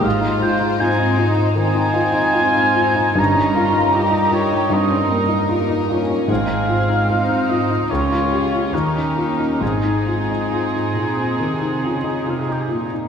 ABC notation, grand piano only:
X:1
M:4/4
L:1/16
Q:1/4=75
K:Ab
V:1 name="Grand piano"
A,, E F E F E F E E, E F E F E F E | G,, E F E F E F E G,, D E E F E F E | A,, E F E F E F E D,, F G F E,, E F E | A,, E F E F E F E E, E F E F E F E |]